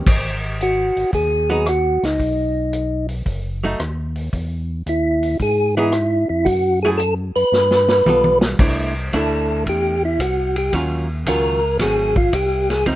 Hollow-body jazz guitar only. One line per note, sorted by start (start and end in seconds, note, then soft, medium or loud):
1.50 1.65 F#3 medium
1.50 1.65 B3 medium
1.50 1.66 D#4 medium
3.64 3.79 F#3 medium
3.64 3.79 A3 medium
3.64 3.79 D#4 medium
5.77 5.92 E3 medium
5.77 5.92 B3 medium
5.77 5.93 D#4 medium
5.77 5.93 G#4 medium
6.85 6.99 F#3 medium
6.85 6.99 A3 medium
6.85 6.99 E4 medium
6.85 7.00 G#4 medium
8.07 8.59 G3 medium
8.07 8.60 B3 medium
8.07 8.61 F4 medium
8.07 8.61 A4 medium
8.60 8.93 A3 medium
8.60 8.93 D4 medium
8.60 8.93 E4 medium
9.14 9.96 A3 medium
9.14 9.96 D4 medium
9.14 9.97 E4 medium
10.74 11.06 D#3 soft
10.74 11.07 F#3 medium
10.74 11.07 C#4 medium
10.74 11.07 F4 medium
11.28 11.60 D#3 medium
11.28 11.60 F#3 medium
11.28 11.60 C#4 medium
11.28 11.60 F4 medium
11.81 12.13 F#3 soft
11.81 12.14 A3 medium
11.81 12.14 C4 soft
12.87 12.96 F3 medium
12.87 12.96 C4 medium
12.87 12.96 D#4 medium